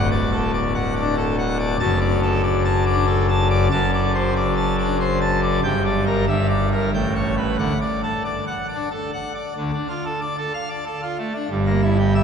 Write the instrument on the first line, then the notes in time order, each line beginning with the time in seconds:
pipe organ
Already playing: D1 D2
0.11 D5
0.32 A4
0.54 D5
0.75 F#5
0.96 D5
1.01 D4
1.17 A4
1.38 F#5
1.59 D5
1.80 F#1 F#2 A5
2.01 D5
2.22 A4
2.43 D5
2.65 A5
2.86 D5
2.91 D4
3.07 A4
3.29 A5
3.50 D5
3.71 F#1 F#2 A5
3.93 D5
4.14 C5
4.36 D5
4.57 A5
4.78 D5
4.84 D4
5.00 C5
5.21 A5
5.42 D5
5.64 G1 G2 G5
5.85 D5
6.06 A#4
6.28 G1 G2 E5
6.50 D5
6.72 A#4
6.94 A1 A2 G5
7.15 C#5
7.38 B4
7.59 D2 D3 F#5
7.81 D5
8.03 A4
8.25 D5
8.47 F#5
8.69 D5
8.74 D4
8.91 A4
9.13 F#5
9.35 D5
9.57 D2 D3
9.73 D4
9.89 F4
10.05 A4
10.21 D5
10.38 A4
10.54 F5
10.70 D5
10.86 A4
11.02 F4
11.18 A3
11.35 D4
11.50 G1 G2
11.66 A#3
11.82 E4
11.99 G4
12.15 E5